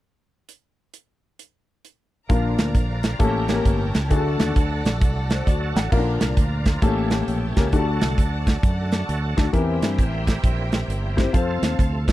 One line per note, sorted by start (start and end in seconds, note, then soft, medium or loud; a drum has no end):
0.49 closed hi-hat soft
0.94 closed hi-hat medium
1.39 closed hi-hat medium
1.85 closed hi-hat soft
2.29 2.54 A#1 medium
2.29 3.00 A#2 medium
2.29 3.19 D3 medium
2.29 3.19 F3 medium
2.29 2.76 A#3 medium
2.29 2.76 D4 medium
2.29 3.19 F4 medium
2.29 2.76 F4 medium
2.29 3.19 A#4 medium
2.29 2.76 A#4 medium
2.29 3.20 A#4 medium
2.29 3.19 D5 medium
2.29 3.19 F5 medium
2.29 3.19 A#5 medium
2.29 kick medium
2.29 closed hi-hat medium
2.58 2.72 D2 medium
2.58 snare loud
2.58 closed hi-hat medium
2.75 3.13 A#1 medium
2.75 kick medium
2.75 closed hi-hat medium
3.03 snare loud
3.03 closed hi-hat medium
3.19 3.59 A1 medium
3.19 3.90 A2 medium
3.19 4.11 E3 medium
3.19 3.43 A#3 medium
3.19 3.43 C#4 medium
3.19 4.11 C#4 medium
3.19 3.43 G4 medium
3.19 4.11 G4 medium
3.19 3.43 A4 loud
3.19 4.10 A#4 medium
3.19 4.11 A#4 medium
3.19 4.10 C#5 medium
3.19 4.10 G5 medium
3.19 5.89 A5 medium
3.19 kick loud
3.19 closed hi-hat medium
3.48 3.81 A#3 medium
3.48 3.81 C#4 medium
3.48 3.81 G4 medium
3.48 3.53 A4 medium
3.48 snare loud
3.48 closed hi-hat medium
3.54 3.84 A#4 medium
3.65 3.90 G1 medium
3.65 kick medium
3.65 closed hi-hat medium
3.95 4.09 C#2 medium
3.95 snare medium
3.95 closed hi-hat medium
4.10 4.36 D2 loud
4.10 4.81 D3 medium
4.10 5.91 D3 medium
4.10 5.91 F#3 medium
4.10 4.57 A3 medium
4.10 5.91 A3 medium
4.10 4.57 D4 medium
4.10 4.57 F#4 medium
4.10 5.91 F#4 medium
4.10 4.18 G#4 medium
4.10 5.91 A4 medium
4.10 5.91 D5 medium
4.10 5.91 F#5 medium
4.10 kick medium
4.10 closed hi-hat medium
4.16 4.60 A4 medium
4.39 4.54 D#2 medium
4.39 snare medium
4.39 closed hi-hat medium
4.56 4.81 D2 medium
4.56 kick medium
4.56 closed hi-hat medium
4.85 5.02 A#1 medium
4.85 snare loud
4.85 closed hi-hat medium
5.01 5.40 C2 medium
5.01 kick loud
5.01 closed hi-hat medium
5.30 5.46 C5 medium
5.30 snare loud
5.30 closed hi-hat soft
5.47 5.72 D2 medium
5.47 5.75 F#4 medium
5.47 5.75 D5 medium
5.47 kick medium
5.47 closed hi-hat medium
5.76 5.90 A1 medium
5.76 6.20 A4 soft
5.76 6.19 F#5 medium
5.76 snare loud
5.76 closed hi-hat medium
5.92 6.17 A#1 medium
5.92 6.62 A#2 medium
5.92 6.82 D3 medium
5.92 6.82 F3 soft
5.92 6.38 A#3 medium
5.92 5.99 C#4 medium
5.92 6.38 F4 medium
5.92 6.82 F4 medium
5.92 6.39 A#4 medium
5.92 6.82 A#4 medium
5.92 6.82 D5 medium
5.92 6.82 F5 medium
5.92 6.82 A#5 medium
5.92 kick medium
5.92 crash medium
5.97 6.41 D4 medium
6.21 6.35 C2 medium
6.21 snare loud
6.21 closed hi-hat medium
6.37 6.76 D2 medium
6.37 kick medium
6.37 closed hi-hat medium
6.66 kick medium
6.66 snare medium
6.66 closed hi-hat medium
6.82 7.21 A1 medium
6.82 7.53 A2 medium
6.82 7.72 E3 medium
6.82 7.39 A#3 medium
6.82 7.39 C#4 medium
6.82 7.72 C#4 medium
6.82 7.72 G4 medium
6.82 7.39 G4 medium
6.82 9.51 A4 medium
6.82 7.39 A4 medium
6.82 7.73 C#5 medium
6.82 7.73 G5 medium
6.82 9.52 A5 medium
6.82 kick loud
6.82 closed hi-hat medium
7.10 snare loud
7.10 closed hi-hat medium
7.28 7.53 A#1 medium
7.28 closed hi-hat medium
7.56 7.71 C#2 medium
7.56 7.65 A#3 medium
7.56 7.65 C#4 medium
7.56 7.65 G4 medium
7.56 7.65 A#4 medium
7.56 kick medium
7.56 snare loud
7.56 closed hi-hat medium
7.73 7.98 D2 medium
7.73 9.52 D3 medium
7.73 8.43 D3 medium
7.73 9.52 F#3 medium
7.73 8.19 A3 medium
7.73 9.52 A3 soft
7.73 8.19 D4 medium
7.73 9.52 F#4 medium
7.73 8.19 F#4 medium
7.73 7.80 G4 medium
7.73 9.52 A4 medium
7.73 9.52 D5 medium
7.73 9.52 F#5 medium
7.73 kick medium
7.73 closed hi-hat medium
7.79 8.22 A4 medium
8.01 8.16 C2 medium
8.01 snare loud
8.01 closed hi-hat medium
8.18 8.56 D2 medium
8.18 kick medium
8.18 closed hi-hat medium
8.47 kick medium
8.47 snare loud
8.47 closed hi-hat medium
8.63 9.02 F#2 medium
8.63 kick loud
8.63 closed hi-hat medium
8.92 snare loud
8.92 closed hi-hat medium
9.09 9.33 D2 medium
9.09 closed hi-hat medium
9.37 9.52 D2 medium
9.37 9.45 A3 medium
9.37 9.46 D4 medium
9.37 9.46 F#4 medium
9.37 9.46 A4 medium
9.37 kick medium
9.37 snare loud
9.37 closed hi-hat medium
9.53 9.78 E2 medium
9.53 10.23 E3 medium
9.53 11.33 E3 medium
9.53 11.33 G3 medium
9.53 11.33 A#3 medium
9.53 10.00 C4 medium
9.53 11.33 C4 medium
9.53 10.00 E4 medium
9.53 10.00 G4 medium
9.53 11.33 G4 medium
9.53 10.00 A#4 medium
9.53 11.32 A#4 medium
9.53 12.12 C5 medium
9.53 11.33 E5 medium
9.53 11.33 G5 medium
9.53 kick medium
9.53 closed hi-hat medium
9.82 9.96 G2 medium
9.82 snare medium
9.82 closed hi-hat medium
9.98 10.37 A1 medium
9.98 kick medium
9.98 closed hi-hat medium
10.27 kick medium
10.27 snare loud
10.27 closed hi-hat medium
10.44 10.82 A#1 medium
10.44 kick loud
10.44 closed hi-hat medium
10.72 snare loud
10.72 closed hi-hat medium
10.88 11.27 G1 medium
10.88 closed hi-hat medium
11.17 11.26 C4 medium
11.17 11.26 E4 medium
11.17 11.26 G4 medium
11.17 11.26 C5 medium
11.17 kick medium
11.17 snare loud
11.17 closed hi-hat medium
11.33 11.59 F2 medium
11.33 12.12 C3 medium
11.33 12.12 F3 soft
11.33 12.12 A3 medium
11.33 11.80 C4 medium
11.33 11.80 F4 medium
11.33 12.12 F4 soft
11.33 11.80 A4 medium
11.33 12.12 A4 medium
11.33 11.80 C5 medium
11.33 12.12 F5 medium
11.33 12.12 A5 medium
11.33 kick medium
11.33 closed hi-hat medium
11.62 11.76 D#2 medium
11.62 snare loud
11.62 closed hi-hat medium
11.79 12.12 D2 medium
11.79 kick medium
11.79 closed hi-hat medium
12.08 kick medium
12.08 snare loud
12.08 closed hi-hat medium